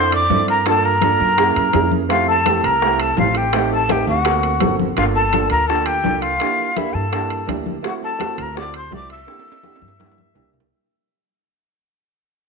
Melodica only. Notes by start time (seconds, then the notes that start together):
Already playing: C5
0.13 D5
0.49 A#4
0.67 A4
0.84 A#4
2.10 F4
2.28 A4
2.64 A#4
3.01 A4
3.19 F4
3.37 G4
3.72 A4
3.91 G4
4.09 F#4
4.98 F4
5.15 A4
5.50 A#4
5.67 A4
5.85 G4
6.21 F4
6.76 E4
6.94 A4
7.87 F#4
8.04 A4
8.40 A#4
8.58 D5
8.75 C5
8.94 D5
9.12 E5